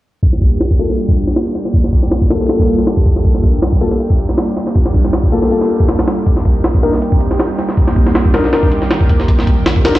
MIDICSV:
0, 0, Header, 1, 4, 480
1, 0, Start_track
1, 0, Key_signature, -2, "minor"
1, 0, Tempo, 377358
1, 289, Time_signature, 4, 2, 24, 8
1, 12710, End_track
2, 0, Start_track
2, 0, Title_t, "Grand piano"
2, 0, Program_c, 0, 0
2, 1007, Note_on_c, 0, 65, 82
2, 1008, Note_on_c, 0, 58, 87
2, 1008, Note_on_c, 0, 69, 94
2, 1097, Note_off_c, 0, 58, 0
2, 1097, Note_off_c, 0, 65, 0
2, 1097, Note_off_c, 0, 69, 0
2, 2928, Note_on_c, 0, 58, 79
2, 2928, Note_on_c, 0, 65, 71
2, 2929, Note_on_c, 0, 69, 87
2, 3141, Note_off_c, 0, 65, 0
2, 3142, Note_off_c, 0, 58, 0
2, 3142, Note_off_c, 0, 69, 0
2, 3168, Note_on_c, 0, 58, 73
2, 3168, Note_on_c, 0, 69, 80
2, 3169, Note_on_c, 0, 65, 68
2, 4822, Note_off_c, 0, 58, 0
2, 4822, Note_off_c, 0, 65, 0
2, 4822, Note_off_c, 0, 69, 0
2, 4846, Note_on_c, 0, 69, 96
2, 4847, Note_on_c, 0, 58, 90
2, 4847, Note_on_c, 0, 65, 80
2, 4937, Note_off_c, 0, 58, 0
2, 4937, Note_off_c, 0, 65, 0
2, 4937, Note_off_c, 0, 69, 0
2, 6768, Note_on_c, 0, 58, 76
2, 6768, Note_on_c, 0, 65, 75
2, 6768, Note_on_c, 0, 69, 87
2, 6981, Note_off_c, 0, 58, 0
2, 6981, Note_off_c, 0, 69, 0
2, 6982, Note_off_c, 0, 65, 0
2, 7008, Note_on_c, 0, 65, 67
2, 7008, Note_on_c, 0, 69, 81
2, 7009, Note_on_c, 0, 58, 75
2, 7955, Note_off_c, 0, 58, 0
2, 7955, Note_off_c, 0, 65, 0
2, 7955, Note_off_c, 0, 69, 0
2, 8688, Note_on_c, 0, 62, 86
2, 8688, Note_on_c, 0, 63, 81
2, 8688, Note_on_c, 0, 70, 96
2, 8777, Note_off_c, 0, 62, 0
2, 8777, Note_off_c, 0, 70, 0
2, 8778, Note_off_c, 0, 63, 0
2, 10610, Note_on_c, 0, 63, 76
2, 10610, Note_on_c, 0, 70, 86
2, 10611, Note_on_c, 0, 62, 82
2, 10823, Note_off_c, 0, 62, 0
2, 10823, Note_off_c, 0, 63, 0
2, 10823, Note_off_c, 0, 70, 0
2, 10850, Note_on_c, 0, 62, 77
2, 10850, Note_on_c, 0, 63, 69
2, 10850, Note_on_c, 0, 70, 83
2, 12503, Note_off_c, 0, 62, 0
2, 12503, Note_off_c, 0, 63, 0
2, 12503, Note_off_c, 0, 70, 0
2, 12527, Note_on_c, 0, 63, 84
2, 12528, Note_on_c, 0, 70, 100
2, 12529, Note_on_c, 0, 62, 93
2, 12617, Note_off_c, 0, 63, 0
2, 12617, Note_off_c, 0, 70, 0
2, 12618, Note_off_c, 0, 62, 0
2, 12710, End_track
3, 0, Start_track
3, 0, Title_t, "Analog synth pad"
3, 0, Program_c, 1, 89
3, 284, Note_on_c, 1, 55, 90
3, 285, Note_on_c, 1, 58, 86
3, 285, Note_on_c, 1, 62, 86
3, 285, Note_on_c, 1, 65, 90
3, 286, Note_on_c, 1, 67, 102
3, 979, Note_off_c, 1, 55, 0
3, 980, Note_off_c, 1, 58, 0
3, 980, Note_off_c, 1, 62, 0
3, 980, Note_off_c, 1, 65, 0
3, 980, Note_off_c, 1, 67, 0
3, 1004, Note_on_c, 1, 65, 82
3, 1004, Note_on_c, 1, 67, 104
3, 1005, Note_on_c, 1, 62, 85
3, 1006, Note_on_c, 1, 58, 85
3, 1007, Note_on_c, 1, 55, 95
3, 2179, Note_off_c, 1, 65, 0
3, 2180, Note_off_c, 1, 58, 0
3, 2180, Note_off_c, 1, 62, 0
3, 2180, Note_off_c, 1, 67, 0
3, 2181, Note_off_c, 1, 55, 0
3, 2205, Note_on_c, 1, 62, 85
3, 2206, Note_on_c, 1, 67, 105
3, 2207, Note_on_c, 1, 58, 85
3, 2207, Note_on_c, 1, 65, 88
3, 2208, Note_on_c, 1, 55, 95
3, 2900, Note_off_c, 1, 62, 0
3, 2901, Note_off_c, 1, 55, 0
3, 2901, Note_off_c, 1, 58, 0
3, 2901, Note_off_c, 1, 65, 0
3, 2901, Note_off_c, 1, 67, 0
3, 2927, Note_on_c, 1, 65, 85
3, 2929, Note_on_c, 1, 55, 93
3, 2929, Note_on_c, 1, 62, 81
3, 2930, Note_on_c, 1, 58, 85
3, 2930, Note_on_c, 1, 67, 97
3, 4101, Note_off_c, 1, 65, 0
3, 4102, Note_off_c, 1, 55, 0
3, 4102, Note_off_c, 1, 62, 0
3, 4103, Note_off_c, 1, 58, 0
3, 4103, Note_off_c, 1, 67, 0
3, 4123, Note_on_c, 1, 58, 84
3, 4125, Note_on_c, 1, 55, 93
3, 4125, Note_on_c, 1, 65, 91
3, 4125, Note_on_c, 1, 67, 108
3, 4126, Note_on_c, 1, 62, 88
3, 4819, Note_off_c, 1, 58, 0
3, 4820, Note_off_c, 1, 55, 0
3, 4820, Note_off_c, 1, 65, 0
3, 4820, Note_off_c, 1, 67, 0
3, 4821, Note_off_c, 1, 62, 0
3, 4846, Note_on_c, 1, 55, 96
3, 4847, Note_on_c, 1, 58, 86
3, 4847, Note_on_c, 1, 62, 86
3, 4847, Note_on_c, 1, 65, 85
3, 4847, Note_on_c, 1, 67, 106
3, 6021, Note_off_c, 1, 55, 0
3, 6021, Note_off_c, 1, 58, 0
3, 6021, Note_off_c, 1, 62, 0
3, 6021, Note_off_c, 1, 65, 0
3, 6021, Note_off_c, 1, 67, 0
3, 6047, Note_on_c, 1, 58, 85
3, 6048, Note_on_c, 1, 55, 96
3, 6048, Note_on_c, 1, 62, 85
3, 6048, Note_on_c, 1, 65, 87
3, 6049, Note_on_c, 1, 67, 105
3, 6741, Note_off_c, 1, 58, 0
3, 6741, Note_off_c, 1, 65, 0
3, 6742, Note_off_c, 1, 55, 0
3, 6742, Note_off_c, 1, 62, 0
3, 6742, Note_off_c, 1, 67, 0
3, 6764, Note_on_c, 1, 65, 87
3, 6765, Note_on_c, 1, 67, 103
3, 6766, Note_on_c, 1, 58, 84
3, 6766, Note_on_c, 1, 62, 83
3, 6767, Note_on_c, 1, 55, 88
3, 7940, Note_off_c, 1, 65, 0
3, 7940, Note_off_c, 1, 67, 0
3, 7941, Note_off_c, 1, 55, 0
3, 7941, Note_off_c, 1, 58, 0
3, 7941, Note_off_c, 1, 62, 0
3, 7963, Note_on_c, 1, 67, 107
3, 7964, Note_on_c, 1, 63, 89
3, 7965, Note_on_c, 1, 55, 94
3, 7965, Note_on_c, 1, 58, 89
3, 7966, Note_on_c, 1, 60, 83
3, 8659, Note_off_c, 1, 67, 0
3, 8660, Note_off_c, 1, 55, 0
3, 8660, Note_off_c, 1, 58, 0
3, 8660, Note_off_c, 1, 63, 0
3, 8661, Note_off_c, 1, 60, 0
3, 8687, Note_on_c, 1, 67, 102
3, 8688, Note_on_c, 1, 55, 90
3, 8688, Note_on_c, 1, 58, 83
3, 8688, Note_on_c, 1, 60, 81
3, 8688, Note_on_c, 1, 63, 86
3, 9861, Note_off_c, 1, 58, 0
3, 9861, Note_off_c, 1, 67, 0
3, 9862, Note_off_c, 1, 55, 0
3, 9862, Note_off_c, 1, 60, 0
3, 9862, Note_off_c, 1, 63, 0
3, 9883, Note_on_c, 1, 63, 89
3, 9884, Note_on_c, 1, 60, 88
3, 9885, Note_on_c, 1, 55, 98
3, 9885, Note_on_c, 1, 58, 89
3, 9885, Note_on_c, 1, 67, 106
3, 10579, Note_off_c, 1, 63, 0
3, 10580, Note_off_c, 1, 55, 0
3, 10580, Note_off_c, 1, 58, 0
3, 10580, Note_off_c, 1, 60, 0
3, 10580, Note_off_c, 1, 67, 0
3, 10607, Note_on_c, 1, 58, 85
3, 10607, Note_on_c, 1, 60, 81
3, 10608, Note_on_c, 1, 51, 88
3, 10608, Note_on_c, 1, 55, 93
3, 10609, Note_on_c, 1, 67, 107
3, 11781, Note_off_c, 1, 58, 0
3, 11781, Note_off_c, 1, 60, 0
3, 11782, Note_off_c, 1, 51, 0
3, 11782, Note_off_c, 1, 55, 0
3, 11782, Note_off_c, 1, 67, 0
3, 11807, Note_on_c, 1, 51, 90
3, 11808, Note_on_c, 1, 58, 86
3, 11809, Note_on_c, 1, 55, 93
3, 11810, Note_on_c, 1, 60, 88
3, 11811, Note_on_c, 1, 67, 105
3, 12501, Note_off_c, 1, 51, 0
3, 12502, Note_off_c, 1, 55, 0
3, 12502, Note_off_c, 1, 58, 0
3, 12502, Note_off_c, 1, 60, 0
3, 12503, Note_off_c, 1, 67, 0
3, 12528, Note_on_c, 1, 55, 96
3, 12528, Note_on_c, 1, 58, 86
3, 12528, Note_on_c, 1, 60, 84
3, 12528, Note_on_c, 1, 67, 104
3, 12529, Note_on_c, 1, 63, 90
3, 12710, Note_off_c, 1, 55, 0
3, 12710, Note_off_c, 1, 58, 0
3, 12710, Note_off_c, 1, 60, 0
3, 12710, Note_off_c, 1, 63, 0
3, 12710, Note_off_c, 1, 67, 0
3, 12710, End_track
4, 0, Start_track
4, 0, Title_t, "Drums"
4, 287, Note_on_c, 9, 36, 104
4, 288, Note_on_c, 9, 42, 83
4, 415, Note_off_c, 9, 36, 0
4, 415, Note_off_c, 9, 42, 0
4, 418, Note_on_c, 9, 38, 43
4, 528, Note_on_c, 9, 36, 83
4, 529, Note_on_c, 9, 42, 66
4, 545, Note_off_c, 9, 38, 0
4, 655, Note_off_c, 9, 36, 0
4, 656, Note_off_c, 9, 42, 0
4, 770, Note_on_c, 9, 38, 114
4, 770, Note_on_c, 9, 42, 82
4, 897, Note_off_c, 9, 38, 0
4, 897, Note_off_c, 9, 42, 0
4, 898, Note_on_c, 9, 36, 84
4, 1011, Note_on_c, 9, 42, 62
4, 1025, Note_off_c, 9, 36, 0
4, 1138, Note_off_c, 9, 42, 0
4, 1141, Note_on_c, 9, 38, 35
4, 1253, Note_on_c, 9, 42, 79
4, 1268, Note_off_c, 9, 38, 0
4, 1379, Note_on_c, 9, 36, 87
4, 1380, Note_off_c, 9, 42, 0
4, 1492, Note_on_c, 9, 42, 66
4, 1506, Note_off_c, 9, 36, 0
4, 1620, Note_off_c, 9, 42, 0
4, 1620, Note_on_c, 9, 38, 44
4, 1732, Note_off_c, 9, 38, 0
4, 1732, Note_on_c, 9, 38, 110
4, 1732, Note_on_c, 9, 42, 84
4, 1859, Note_off_c, 9, 38, 0
4, 1859, Note_off_c, 9, 42, 0
4, 1970, Note_on_c, 9, 38, 38
4, 1970, Note_on_c, 9, 42, 66
4, 2097, Note_off_c, 9, 38, 0
4, 2097, Note_off_c, 9, 42, 0
4, 2100, Note_on_c, 9, 38, 41
4, 2209, Note_on_c, 9, 36, 108
4, 2211, Note_on_c, 9, 42, 82
4, 2228, Note_off_c, 9, 38, 0
4, 2337, Note_off_c, 9, 36, 0
4, 2338, Note_off_c, 9, 42, 0
4, 2340, Note_on_c, 9, 38, 54
4, 2449, Note_on_c, 9, 36, 85
4, 2449, Note_on_c, 9, 46, 78
4, 2467, Note_off_c, 9, 38, 0
4, 2576, Note_off_c, 9, 36, 0
4, 2577, Note_off_c, 9, 46, 0
4, 2580, Note_on_c, 9, 38, 47
4, 2689, Note_off_c, 9, 38, 0
4, 2689, Note_on_c, 9, 38, 116
4, 2689, Note_on_c, 9, 42, 82
4, 2816, Note_off_c, 9, 38, 0
4, 2816, Note_off_c, 9, 42, 0
4, 2818, Note_on_c, 9, 36, 88
4, 2930, Note_on_c, 9, 38, 101
4, 2930, Note_on_c, 9, 42, 75
4, 2945, Note_off_c, 9, 36, 0
4, 3057, Note_off_c, 9, 38, 0
4, 3057, Note_off_c, 9, 42, 0
4, 3059, Note_on_c, 9, 38, 41
4, 3169, Note_off_c, 9, 38, 0
4, 3169, Note_on_c, 9, 38, 103
4, 3169, Note_on_c, 9, 42, 76
4, 3296, Note_off_c, 9, 38, 0
4, 3296, Note_off_c, 9, 42, 0
4, 3298, Note_on_c, 9, 36, 83
4, 3410, Note_on_c, 9, 42, 60
4, 3425, Note_off_c, 9, 36, 0
4, 3538, Note_off_c, 9, 42, 0
4, 3538, Note_on_c, 9, 38, 31
4, 3649, Note_off_c, 9, 38, 0
4, 3649, Note_on_c, 9, 38, 102
4, 3649, Note_on_c, 9, 42, 72
4, 3776, Note_off_c, 9, 38, 0
4, 3776, Note_off_c, 9, 42, 0
4, 3778, Note_on_c, 9, 36, 82
4, 3889, Note_off_c, 9, 36, 0
4, 3889, Note_on_c, 9, 36, 94
4, 3890, Note_on_c, 9, 42, 77
4, 4016, Note_off_c, 9, 36, 0
4, 4017, Note_off_c, 9, 42, 0
4, 4019, Note_on_c, 9, 38, 36
4, 4128, Note_on_c, 9, 36, 101
4, 4128, Note_on_c, 9, 42, 79
4, 4146, Note_off_c, 9, 38, 0
4, 4255, Note_off_c, 9, 36, 0
4, 4255, Note_off_c, 9, 42, 0
4, 4257, Note_on_c, 9, 38, 43
4, 4368, Note_on_c, 9, 36, 89
4, 4369, Note_on_c, 9, 42, 65
4, 4385, Note_off_c, 9, 38, 0
4, 4495, Note_off_c, 9, 36, 0
4, 4496, Note_off_c, 9, 42, 0
4, 4609, Note_on_c, 9, 38, 113
4, 4609, Note_on_c, 9, 42, 86
4, 4736, Note_off_c, 9, 38, 0
4, 4736, Note_off_c, 9, 42, 0
4, 4737, Note_on_c, 9, 36, 89
4, 4848, Note_on_c, 9, 42, 62
4, 4864, Note_off_c, 9, 36, 0
4, 4976, Note_off_c, 9, 42, 0
4, 4978, Note_on_c, 9, 38, 35
4, 5088, Note_on_c, 9, 42, 86
4, 5105, Note_off_c, 9, 38, 0
4, 5215, Note_off_c, 9, 42, 0
4, 5217, Note_on_c, 9, 36, 92
4, 5328, Note_on_c, 9, 42, 67
4, 5344, Note_off_c, 9, 36, 0
4, 5455, Note_off_c, 9, 42, 0
4, 5457, Note_on_c, 9, 38, 45
4, 5568, Note_off_c, 9, 38, 0
4, 5568, Note_on_c, 9, 38, 107
4, 5568, Note_on_c, 9, 42, 82
4, 5695, Note_off_c, 9, 38, 0
4, 5695, Note_off_c, 9, 42, 0
4, 5808, Note_on_c, 9, 38, 37
4, 5808, Note_on_c, 9, 42, 66
4, 5935, Note_off_c, 9, 38, 0
4, 5935, Note_off_c, 9, 42, 0
4, 5936, Note_on_c, 9, 38, 42
4, 6048, Note_on_c, 9, 36, 106
4, 6048, Note_on_c, 9, 42, 84
4, 6064, Note_off_c, 9, 38, 0
4, 6175, Note_off_c, 9, 36, 0
4, 6175, Note_off_c, 9, 42, 0
4, 6177, Note_on_c, 9, 38, 56
4, 6287, Note_on_c, 9, 36, 88
4, 6287, Note_on_c, 9, 46, 78
4, 6304, Note_off_c, 9, 38, 0
4, 6414, Note_off_c, 9, 46, 0
4, 6415, Note_off_c, 9, 36, 0
4, 6418, Note_on_c, 9, 38, 47
4, 6527, Note_off_c, 9, 38, 0
4, 6527, Note_on_c, 9, 38, 108
4, 6527, Note_on_c, 9, 42, 85
4, 6654, Note_off_c, 9, 38, 0
4, 6654, Note_off_c, 9, 42, 0
4, 6657, Note_on_c, 9, 36, 91
4, 6766, Note_on_c, 9, 42, 64
4, 6784, Note_off_c, 9, 36, 0
4, 6893, Note_off_c, 9, 42, 0
4, 6898, Note_on_c, 9, 38, 42
4, 7008, Note_on_c, 9, 42, 86
4, 7025, Note_off_c, 9, 38, 0
4, 7135, Note_off_c, 9, 42, 0
4, 7139, Note_on_c, 9, 38, 38
4, 7249, Note_on_c, 9, 42, 65
4, 7266, Note_off_c, 9, 38, 0
4, 7376, Note_off_c, 9, 42, 0
4, 7378, Note_on_c, 9, 36, 93
4, 7486, Note_on_c, 9, 38, 97
4, 7486, Note_on_c, 9, 42, 74
4, 7505, Note_off_c, 9, 36, 0
4, 7613, Note_off_c, 9, 38, 0
4, 7613, Note_off_c, 9, 42, 0
4, 7618, Note_on_c, 9, 38, 104
4, 7618, Note_on_c, 9, 42, 75
4, 7728, Note_off_c, 9, 38, 0
4, 7728, Note_off_c, 9, 42, 0
4, 7728, Note_on_c, 9, 38, 105
4, 7728, Note_on_c, 9, 42, 76
4, 7855, Note_off_c, 9, 38, 0
4, 7855, Note_off_c, 9, 42, 0
4, 7967, Note_on_c, 9, 42, 82
4, 7969, Note_on_c, 9, 36, 103
4, 8095, Note_off_c, 9, 42, 0
4, 8096, Note_off_c, 9, 36, 0
4, 8098, Note_on_c, 9, 38, 42
4, 8207, Note_on_c, 9, 42, 64
4, 8208, Note_on_c, 9, 36, 90
4, 8225, Note_off_c, 9, 38, 0
4, 8334, Note_off_c, 9, 42, 0
4, 8335, Note_off_c, 9, 36, 0
4, 8448, Note_on_c, 9, 38, 113
4, 8448, Note_on_c, 9, 42, 84
4, 8575, Note_off_c, 9, 38, 0
4, 8575, Note_off_c, 9, 42, 0
4, 8578, Note_on_c, 9, 36, 90
4, 8688, Note_on_c, 9, 42, 65
4, 8705, Note_off_c, 9, 36, 0
4, 8815, Note_off_c, 9, 42, 0
4, 8819, Note_on_c, 9, 38, 35
4, 8927, Note_on_c, 9, 42, 88
4, 8946, Note_off_c, 9, 38, 0
4, 9054, Note_off_c, 9, 42, 0
4, 9058, Note_on_c, 9, 36, 95
4, 9168, Note_on_c, 9, 42, 65
4, 9185, Note_off_c, 9, 36, 0
4, 9295, Note_off_c, 9, 42, 0
4, 9296, Note_on_c, 9, 38, 45
4, 9407, Note_off_c, 9, 38, 0
4, 9407, Note_on_c, 9, 38, 106
4, 9407, Note_on_c, 9, 42, 81
4, 9534, Note_off_c, 9, 38, 0
4, 9534, Note_off_c, 9, 42, 0
4, 9648, Note_on_c, 9, 38, 37
4, 9648, Note_on_c, 9, 42, 67
4, 9775, Note_off_c, 9, 38, 0
4, 9775, Note_off_c, 9, 42, 0
4, 9777, Note_on_c, 9, 38, 41
4, 9887, Note_on_c, 9, 42, 81
4, 9888, Note_on_c, 9, 36, 105
4, 9904, Note_off_c, 9, 38, 0
4, 10014, Note_off_c, 9, 42, 0
4, 10015, Note_off_c, 9, 36, 0
4, 10017, Note_on_c, 9, 38, 54
4, 10128, Note_on_c, 9, 36, 94
4, 10128, Note_on_c, 9, 46, 76
4, 10144, Note_off_c, 9, 38, 0
4, 10255, Note_off_c, 9, 36, 0
4, 10256, Note_off_c, 9, 46, 0
4, 10259, Note_on_c, 9, 38, 48
4, 10368, Note_off_c, 9, 38, 0
4, 10368, Note_on_c, 9, 38, 116
4, 10368, Note_on_c, 9, 42, 86
4, 10495, Note_off_c, 9, 38, 0
4, 10495, Note_off_c, 9, 42, 0
4, 10497, Note_on_c, 9, 36, 85
4, 10607, Note_on_c, 9, 38, 101
4, 10607, Note_on_c, 9, 42, 72
4, 10624, Note_off_c, 9, 36, 0
4, 10734, Note_off_c, 9, 38, 0
4, 10734, Note_off_c, 9, 42, 0
4, 10737, Note_on_c, 9, 38, 42
4, 10848, Note_off_c, 9, 38, 0
4, 10848, Note_on_c, 9, 38, 98
4, 10848, Note_on_c, 9, 42, 78
4, 10975, Note_off_c, 9, 38, 0
4, 10975, Note_off_c, 9, 42, 0
4, 10977, Note_on_c, 9, 36, 83
4, 11086, Note_on_c, 9, 42, 63
4, 11105, Note_off_c, 9, 36, 0
4, 11214, Note_off_c, 9, 42, 0
4, 11217, Note_on_c, 9, 38, 32
4, 11328, Note_off_c, 9, 38, 0
4, 11328, Note_on_c, 9, 38, 99
4, 11328, Note_on_c, 9, 42, 72
4, 11455, Note_off_c, 9, 38, 0
4, 11455, Note_off_c, 9, 42, 0
4, 11457, Note_on_c, 9, 36, 83
4, 11568, Note_off_c, 9, 36, 0
4, 11568, Note_on_c, 9, 36, 94
4, 11568, Note_on_c, 9, 42, 79
4, 11695, Note_off_c, 9, 36, 0
4, 11695, Note_off_c, 9, 42, 0
4, 11699, Note_on_c, 9, 38, 37
4, 11808, Note_on_c, 9, 36, 105
4, 11809, Note_on_c, 9, 42, 83
4, 11826, Note_off_c, 9, 38, 0
4, 11936, Note_off_c, 9, 36, 0
4, 11937, Note_off_c, 9, 42, 0
4, 11940, Note_on_c, 9, 38, 42
4, 12048, Note_on_c, 9, 36, 94
4, 12049, Note_on_c, 9, 42, 65
4, 12067, Note_off_c, 9, 38, 0
4, 12175, Note_off_c, 9, 36, 0
4, 12176, Note_off_c, 9, 42, 0
4, 12287, Note_on_c, 9, 38, 115
4, 12287, Note_on_c, 9, 42, 89
4, 12414, Note_off_c, 9, 38, 0
4, 12414, Note_off_c, 9, 42, 0
4, 12417, Note_on_c, 9, 36, 90
4, 12528, Note_on_c, 9, 38, 105
4, 12528, Note_on_c, 9, 42, 78
4, 12544, Note_off_c, 9, 36, 0
4, 12655, Note_off_c, 9, 38, 0
4, 12655, Note_off_c, 9, 42, 0
4, 12657, Note_on_c, 9, 38, 97
4, 12657, Note_on_c, 9, 42, 75
4, 12710, Note_off_c, 9, 38, 0
4, 12710, Note_off_c, 9, 42, 0
4, 12710, End_track
0, 0, End_of_file